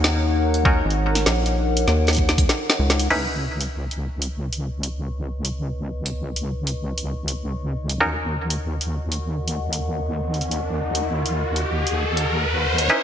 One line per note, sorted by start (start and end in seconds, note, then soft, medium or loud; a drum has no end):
0.00 0.82 D#2 medium
0.00 0.63 C#4 medium
0.00 0.63 D#4 medium
0.00 3.06 D#4 medium
0.00 0.63 F#4 medium
0.00 0.63 A#4 medium
0.00 3.06 A#4 medium
0.00 3.06 C#5 medium
0.00 3.06 F#5 medium
0.04 snare loud
0.54 closed hi-hat medium
0.65 2.16 C#4 medium
0.65 2.16 D#4 medium
0.65 2.16 F#4 medium
0.65 2.16 A#4 medium
0.65 kick loud
0.85 1.25 G#1 loud
0.90 closed hi-hat soft
1.15 snare soft
1.15 closed hi-hat medium
1.26 1.86 A#1 medium
1.26 snare loud
1.46 closed hi-hat medium
1.77 closed hi-hat medium
1.88 2.47 D#2 loud
1.88 snare medium
2.07 snare medium
2.07 closed hi-hat soft
2.09 closed hi-hat soft
2.13 closed hi-hat soft
2.15 closed hi-hat soft
2.17 kick medium
2.17 closed hi-hat soft
2.29 snare medium
2.38 kick loud
2.38 closed hi-hat medium
2.49 snare medium
2.70 snare medium
2.79 3.08 C#2 medium
2.90 snare loud
2.99 closed hi-hat medium
3.10 7.98 C#2 medium
3.10 7.98 C#4 medium
3.10 7.98 D#4 medium
3.10 7.98 E4 medium
3.10 7.96 B4 medium
3.10 7.98 B4 medium
3.10 12.86 D#5 medium
3.10 12.86 C#6 medium
3.10 crash medium
3.61 closed hi-hat medium
3.91 closed hi-hat soft
4.22 closed hi-hat medium
4.53 closed hi-hat soft
4.83 closed hi-hat medium
5.45 closed hi-hat medium
6.06 closed hi-hat medium
6.36 closed hi-hat soft
6.67 closed hi-hat medium
6.98 closed hi-hat medium
7.28 closed hi-hat medium
7.89 closed hi-hat medium
8.00 12.88 D#2 medium
8.00 12.88 C#4 medium
8.00 12.88 D#4 medium
8.00 12.87 F#4 medium
8.00 12.88 A#4 medium
8.00 12.86 A#4 medium
8.00 12.86 F#5 medium
8.00 riser medium
8.50 closed hi-hat medium
8.81 closed hi-hat soft
9.12 closed hi-hat medium
9.48 closed hi-hat soft
9.73 closed hi-hat medium
10.34 closed hi-hat soft
10.41 closed hi-hat soft
10.51 closed hi-hat soft
10.95 closed hi-hat medium
11.26 closed hi-hat soft
11.56 closed hi-hat medium
11.87 closed hi-hat soft
12.17 closed hi-hat medium
12.78 closed hi-hat medium
12.89 13.03 C#3 medium
12.89 13.03 B3 medium
12.89 13.03 C#4 medium
12.89 13.03 D#4 medium
12.89 13.03 E4 medium
12.89 13.03 B4 medium
12.89 snare soft
12.89 riser medium